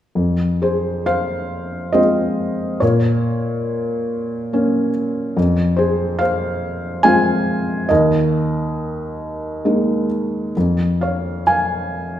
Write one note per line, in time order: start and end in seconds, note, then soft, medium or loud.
0.15 2.77 F2 soft
0.62 1.03 G#4 soft
0.62 1.03 C5 soft
1.06 1.90 C5 medium
1.06 1.97 F5 medium
1.93 2.79 G#3 soft
1.93 2.79 C4 soft
1.93 2.79 F4 soft
1.93 2.78 C5 soft
1.93 2.77 D#5 medium
2.80 5.33 A#2 medium
2.80 4.91 A#4 soft
2.80 4.90 C#5 medium
4.53 5.35 A#3 soft
4.53 5.35 C#4 soft
5.37 7.86 F2 medium
5.77 6.17 G#4 soft
5.77 6.19 C5 medium
6.19 7.01 C5 medium
6.19 7.00 F5 medium
7.03 7.87 G#3 soft
7.03 7.87 C4 soft
7.03 7.87 F4 soft
7.03 7.86 F5 medium
7.03 7.92 G#5 medium
7.89 10.52 D#2 medium
7.89 10.07 A#4 soft
7.89 10.06 D#5 medium
9.65 10.53 G#3 soft
9.65 10.53 A#3 soft
9.65 10.54 D#4 soft
10.57 12.20 F2 soft
11.01 11.43 C#5 soft
11.01 11.42 F5 medium
11.47 12.20 F5 medium
11.47 12.20 G#5 medium